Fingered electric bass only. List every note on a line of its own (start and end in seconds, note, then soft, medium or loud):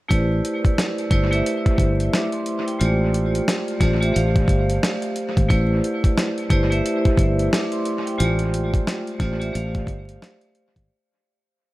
0.11 0.40 A1 loud
1.11 1.41 G1 medium
1.78 2.08 G1 medium
2.81 3.39 A1 loud
3.81 4.10 A1 medium
4.16 4.45 A1 loud
4.48 4.78 G1 medium
5.37 5.49 G#1 medium
5.50 5.80 A1 loud
6.50 6.80 G1 medium
7.18 7.47 G1 medium
8.20 8.79 A1 loud
9.20 9.50 A1 medium
9.55 9.84 A1 loud
9.87 10.17 G1 medium
10.76 10.88 G#1 medium